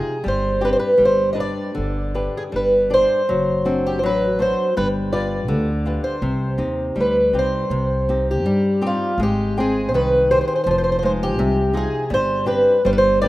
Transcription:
Already playing: C3 D#4 F4 G#4
0.24 G1 G3
0.28 C5
0.61 C4 D4 G4
0.65 B4
0.73 C5
0.79 B4
0.98 G1 G3
1.05 C5
1.33 D4 G4 B4 D#5
1.40 D5
1.75 G1 D3
2.14 D4 G4 B4
2.37 G#4
2.52 G1 G3 B4
2.90 D4 G4 C5 D5
3.29 F#1 F#3
3.65 C4 D4 F#4
3.87 G4
3.99 C5
4.03 A1 F#3 B4
4.39 D4 F#4 C5
4.77 G1 G3 B4
5.13 F4 G4 B4 D5
5.48 D2 D3
5.86 F4 G4 B4
6.04 C5
6.22 C2 C3
6.58 D#2 C4 D#4 G4
6.96 D2 G3
7.01 B4
7.33 C2 C4 D#4 G4
7.39 C5
7.70 C2 C3
8.09 C4 D#4 G4
8.31 G4
8.44 G2 G3
8.82 C4 D#4 G4
8.87 F4
9.18 G#1 G#3
9.23 G4
9.57 C4 G#4 G5
9.89 C5
9.93 C2 D#3 B4
10.31 G4 G#4 C5
10.41 C5
10.48 C5
10.56 C5
10.64 F1 F3 C5
10.71 C5
10.78 C5
10.84 C5
10.92 C5
10.99 D#4 C5
11.03 G#3 F4 C5
11.23 G4
11.37 C2 C3
11.73 D#4 F4 G#4
12.10 G1 G3 C5
12.46 C4 D4 G4 B4
12.85 G1 G3 C5
12.93 B4
12.98 C5
13.22 D4 G4 B4 D5

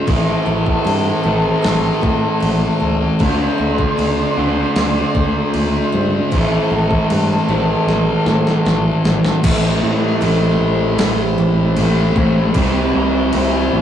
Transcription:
Already playing: A3 C4
0.07 A1 A2 E3 A3 C4 E4 C5 A5, kick, crash
0.46 A1 A3
0.66 kick
0.84 G2 C4, crash
1.23 A1 A3 C4 E4 G4
1.28 A2 E3
1.62 A1 C4, snare, crash
2.01 A2 A3, kick
2.40 A1 E3, crash
2.80 C#2 C4
3.19 D2 D3 A3 C4 D4 F#4 D5 C6, kick, crash
3.58 D2 A3
3.78 kick
3.97 D2 C4, crash
4.37 D2 D3 A3 C4 D4 F#4
4.76 D2 C4, snare, crash
5.15 D2 A3, kick
5.53 D2 A3, crash
5.92 G2 C4
6.31 A1 A2 E3 A3 C4 C5 A5, kick, crash
6.36 E4
6.70 A1 A3
6.91 kick
7.10 G2 C4, crash
7.48 A1 A2 E3 A3 C4 E4 G4, snare
7.87 A1 C4, snare
8.26 A2 A3, snare
8.47 snare
8.66 A1 E3, snare
9.04 A1 C4, snare
9.25 snare
9.43 A1 A2 E3 A3 C4 E4 G4 C5 B5, kick, crash
9.83 A2
10.21 A1 A2 E3 A3 C4, crash
10.61 A1
10.99 A1 E3, snare, crash
11.38 A1 C4
11.77 A1 A2 E3 A3 G4, crash
12.15 A1 A2 E3 A3 C4, kick
12.54 C2 C3 E3 G3 C4 E4, kick, crash
12.95 C2
13.33 C2 C3 G3 C4 E4, crash
13.73 A1

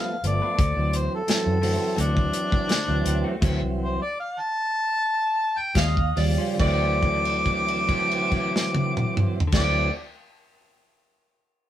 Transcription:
Already playing: F3 A3 B3 F5
0.08 muted clean electric guitar stroke
0.23 G1 F3 A3 B3 D5, muted clean electric guitar stroke, closed hi-hat
0.42 D4 F4 B4
0.58 D2 D3 A3 C4 F#4, kick, closed hi-hat
0.76 D2 E3 F#3 C4, muted clean electric guitar stroke
0.93 C5, muted clean electric guitar stroke, closed hi-hat
1.15 A4
1.27 E3 F#3 C4, muted clean electric guitar stroke, snare, closed hi-hat
1.46 F#2
1.62 D3 E3 F#3 A3 C4 F#4, open hi-hat
1.80 muted clean electric guitar stroke
1.96 D2 D3 A3 C4 F#4, closed hi-hat
2.00 D4
2.16 muted clean electric guitar stroke, kick
2.32 muted clean electric guitar stroke, closed hi-hat
2.52 kick
2.68 D3 A3 C4 F#4, snare, closed hi-hat
2.88 D2 E3 F#3 C4, muted clean electric guitar stroke
3.05 D2, muted clean electric guitar stroke, closed hi-hat
3.24 A3 C4 F#4
3.41 D2 D3 E3 F#3 A3 C4 F#4, kick, closed hi-hat, crash
3.61 C2, muted clean electric guitar stroke
3.82 C5
4.02 D5
4.20 F5
4.39 A5
5.58 G5
5.75 D#2 D#3 G3 C#4 F4 D#5 F5, kick, snare, closed hi-hat
5.96 muted clean electric guitar stroke, kick
6.16 D#2 C#3 F3 G3 D5, muted clean electric guitar stroke, open hi-hat
6.38 G3 C#4 F4
6.54 D3
6.59 D2 E3 F#3 A3 C4 D5 D6, kick, crash
6.66 C4
6.71 F#4
7.02 kick, crash
7.25 crash
7.46 kick, crash
7.68 crash
7.89 kick, crash
8.11 crash
8.32 kick, crash
8.56 snare
8.75 high tom
8.97 mid tom
9.17 mid tom
9.40 floor tom
9.47 D3
9.52 D2 E3 F#3 A3 C4 D5 D6, kick, snare, crash
9.59 C4
9.64 F#4

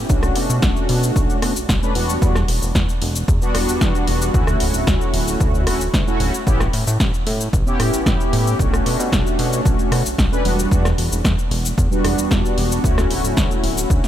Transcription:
0.08 B1 A3 C#4 D4 F#4, kick, shaker
0.23 cross-stick, shaker
0.36 B2, open hi-hat
0.50 B2, shaker
0.62 B1, kick, snare, shaker
0.77 shaker
0.89 B2, open hi-hat
1.03 shaker
1.16 B1, kick, shaker
1.30 shaker
1.42 B2, cross-stick, open hi-hat
1.56 B1, shaker
1.69 B1, kick, snare, shaker
1.82 A3 C#4 D4 B4, shaker
1.95 E1 G3 B3 D4 F#4, open hi-hat
2.09 shaker
2.21 E2 G3 B3 D4 F#4, kick, shaker
2.35 cross-stick, snare, shaker
2.48 E1, open hi-hat
2.62 E1, shaker
2.75 E2, kick, snare, shaker
2.89 shaker
3.02 E1, open hi-hat
3.16 shaker
3.28 E2, kick, shaker
3.41 G3 B3 D4 F#4, shaker
3.55 E1, cross-stick, open hi-hat
3.69 E2, shaker
3.81 E2, kick, snare, shaker
3.95 shaker
4.07 E1, open hi-hat
4.22 shaker
4.33 D2 A3 C#4 E4 F#4, kick, shaker
4.47 cross-stick, shaker
4.60 D1, open hi-hat
4.74 D1, shaker
4.87 D2, kick, snare, shaker
5.01 shaker
5.14 D1, open hi-hat
5.28 shaker
5.40 D2, kick, shaker
5.55 shaker
5.66 D1 A3 C#4 E4 F#4, cross-stick, open hi-hat
5.81 shaker
5.94 D2, kick, snare, shaker
6.07 A3 C#4 E4 F#4, shaker
6.20 D1 A3 C#4 E4 F#4, open hi-hat
6.34 shaker
6.46 A1 B3 C#4 E4 G4, kick, shaker
6.60 cross-stick, snare, shaker
6.73 A2, open hi-hat
6.87 A2, shaker
7.00 A1, kick, snare, shaker
7.14 shaker
7.27 A2, open hi-hat
7.41 shaker
7.53 A1, kick, shaker
7.66 B3 C#4 E4 G4, shaker
7.80 A2, cross-stick, open hi-hat
7.94 A1, shaker
8.06 A1, kick, snare, shaker
8.21 shaker
8.33 A2, open hi-hat
8.47 shaker
8.59 B1 A3 C#4 D4 F#4, kick, shaker
8.74 cross-stick, shaker
8.86 B2, open hi-hat
8.99 B2, shaker
9.12 B1, kick, snare, shaker
9.27 shaker
9.39 B2, open hi-hat
9.53 shaker
9.65 B1, kick, shaker
9.79 shaker
9.92 B2, cross-stick, open hi-hat
10.05 B1, shaker
10.18 B1, kick, snare, shaker
10.32 A3 C#4 D4 B4, shaker
10.45 E1 G3 B3 D4 F#4, open hi-hat
10.59 shaker
10.71 E2 G3 B3 D4 F#4, kick, shaker
10.85 cross-stick, snare, shaker
10.98 E1, open hi-hat
11.11 E1, shaker
11.24 E2, kick, snare, shaker
11.39 shaker
11.51 E1, open hi-hat
11.65 shaker
11.78 E2, kick, shaker
11.90 G3 B3 D4 F#4, shaker
12.04 E1, cross-stick, open hi-hat
12.18 E2, shaker
12.31 E2, kick, snare, shaker
12.45 shaker
12.58 E1, open hi-hat
12.72 shaker
12.83 D2 A3 C#4 E4 F#4, kick, shaker
12.98 cross-stick, snare, shaker
13.10 D1, open hi-hat
13.24 D1, shaker
13.37 D2, kick, snare, shaker
13.51 shaker
13.64 D1, open hi-hat
13.78 shaker
13.90 D2, kick, shaker
14.04 snare, shaker

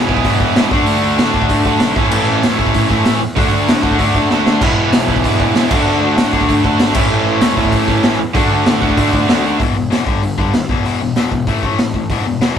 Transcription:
Already playing: B1 E2 B2 E3
0.08 E3 G#3 B3 E4 G#4, kick
0.17 kick
0.24 E1 E2 B2 E3, kick, open hi-hat
0.40 E1, kick
0.55 E1 E3 G#3 B3 E4 G#4, snare, open hi-hat
0.71 D2 D3 A3 D4 F#4 A4, kick
0.86 D2, open hi-hat
1.03 D2
1.18 A2 D3 A3 D4 F#4 A4, snare, open hi-hat
1.34 D3 A3 D4, kick
1.42 kick
1.49 D2, kick, open hi-hat
1.65 D2 D3 A3 D4 F#4 A4, kick
1.80 B1, snare, open hi-hat
1.96 A1 A2 E3 A3 C#4 E4 A4, kick
2.11 A1, crash
2.28 A1
2.43 E2 A2 E3 A3 C#4 E4 A4, snare, open hi-hat
2.59 A2 E3 A3, kick
2.67 kick
2.74 A1, kick, open hi-hat
2.89 A1 A2 E3 A3 C#4 E4 A4, kick
3.05 A1, snare, open hi-hat
3.21 E2
3.36 D2 D3 A3 D4 F#4 A4, kick, open hi-hat
3.52 D2
3.68 A2, snare, open hi-hat
3.82 D3 A3 D4 F#4 A4, kick
3.91 kick
3.99 D2 D3 A3 D4, kick, open hi-hat
4.15 D2, kick
4.30 D2 D3 A3 D4 F#4 A4, snare
4.46 D2, snare
4.61 E1 E2 B2 E3 G#3 B3 E4, kick, crash
4.77 E1
4.93 B1, snare, open hi-hat
5.08 E3 G#3 B3 E4, kick
5.16 kick
5.24 E1 E2 B2 E3, kick, open hi-hat
5.40 E1, kick
5.55 E1 E3 G#3 B3 E4, snare, open hi-hat
5.70 D2 D3 A3 D4 F#4, kick, crash
5.87 D2
6.03 D2
6.17 A2 D3 A3 D4 F#4, snare, open hi-hat
6.33 D3 A3 D4, kick
6.41 kick
6.49 D2, kick, open hi-hat
6.64 D2 D3 A3 D4 F#4, kick
6.79 G#1, snare, open hi-hat
6.94 A1 A2 E3 A3 C#4 E4, kick, crash
7.11 A1
7.26 A1
7.41 E2 A2 E3 A3 C#4 E4, snare, open hi-hat
7.57 A2 E3 A3, kick
7.65 kick
7.72 A1, kick, open hi-hat
7.88 A1 A2 E3 A3 C#4 E4, kick
8.03 A1, snare, open hi-hat
8.20 E2
8.34 D2 D3 A3 D4 F#4, kick, open hi-hat
8.50 D2
8.66 A2, snare, open hi-hat
8.81 D3 A3 D4 F#4, kick
8.90 kick
8.97 D2 D3 A3 D4, kick, open hi-hat
9.13 D2, kick
9.28 D2 D3 A3 D4 F#4, snare, open hi-hat
9.44 D#2
9.60 E1 E2 B2 E3, kick, open hi-hat
9.75 E1 E2 B2
9.90 E1 E2 B2 E3, snare, open hi-hat
10.06 G1 G2 D3 G3, kick
10.22 G1 G2 D3, open hi-hat
10.38 G1 G2 D3 G3, kick
10.53 D#2 G2 D3, snare, open hi-hat
10.69 E1 E2 B2 E3, kick
10.84 E1 E2 B2 E3, open hi-hat
11.00 E1 E2 B2
11.16 E1 E2 B2 E3, snare, open hi-hat
11.31 E1 E2 B2, kick
11.47 A1 A2 E3 A3, kick, open hi-hat
11.63 A1 A2 E3 A3, kick
11.78 A1 A2 E3, snare, open hi-hat
11.94 A1 A2 E3, kick
12.10 E1 E2 B2 E3, kick, open hi-hat
12.26 E1 E2 B2
12.41 E1 E2 B2 E3, snare, open hi-hat

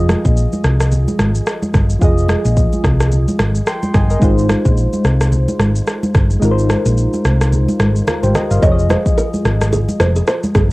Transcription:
Already playing: F1 F3 F4 G#4 D#5
0.09 cross-stick, high conga, shaker
0.25 A#1, kick, shaker
0.37 shaker
0.52 high conga, shaker
0.64 C2, cross-stick, shaker
0.80 cross-stick, shaker
0.92 low conga, shaker
1.08 high conga, shaker
1.19 G#1, cross-stick, high conga, shaker
1.35 shaker
1.47 cross-stick, shaker
1.63 high conga, shaker
1.74 G1, kick, cross-stick, low conga, shaker
1.90 shaker
1.99 F1 F3 F4 G#4, kick, shaker
2.04 D#5
2.18 shaker
2.29 cross-stick, high conga, shaker
2.45 A#1, shaker
2.57 kick, shaker
2.73 high conga, shaker
2.84 C2, kick, cross-stick, shaker
3.00 cross-stick, shaker
3.12 low conga, shaker
3.28 high conga, shaker
3.39 G#1, cross-stick, high conga, shaker
3.55 shaker
3.67 G5 C6, cross-stick, shaker
3.83 high conga, shaker
3.94 G1 D#5 G#5, kick, cross-stick, low conga, shaker
4.10 A#4 D#5, shaker
4.20 G#1 G#3 D#4 F4, kick, shaker
4.24 C5
4.38 shaker
4.49 cross-stick, high conga, shaker
4.65 A#1, kick, shaker
4.77 shaker
4.93 high conga, shaker
5.05 C2, cross-stick, shaker
5.21 cross-stick, shaker
5.32 low conga, shaker
5.48 high conga, shaker
5.59 G#1, cross-stick, high conga, shaker
5.76 shaker
5.87 cross-stick, shaker
6.03 high conga, shaker
6.15 G1, kick, cross-stick, low conga, shaker
6.30 shaker
6.40 G#1 G#3 D#4 F4, shaker
6.45 A#4
6.51 C5
6.59 shaker
6.69 cross-stick, high conga, shaker
6.86 A#1, shaker
6.98 shaker
7.13 high conga, shaker
7.25 C2, cross-stick, shaker
7.41 cross-stick, shaker
7.52 low conga, shaker
7.68 high conga, shaker
7.79 G#1, cross-stick, high conga, shaker
7.96 shaker
8.07 F4 A#4, cross-stick, low conga, shaker
8.23 G#1 G4 C5, high conga, shaker
8.35 A#4 D#5, cross-stick, low conga, shaker
8.51 G1 C5 F5, shaker
8.60 F1 F3 F4 G#4 D#5, kick, shaker
8.65 C#5
8.71 D#5
8.79 shaker
8.89 C5, cross-stick, high conga, shaker
9.06 kick, shaker
9.18 A#4, shaker
9.34 high conga, shaker
9.45 G#1, cross-stick, shaker
9.61 cross-stick, high conga, shaker
9.73 G#4, low conga, shaker
9.89 high conga, shaker
10.00 F1 C5, cross-stick, high conga, shaker
10.16 G#4, shaker
10.27 C5, cross-stick, shaker
10.43 high conga, shaker
10.55 G1 G#4, kick, cross-stick, low conga, shaker

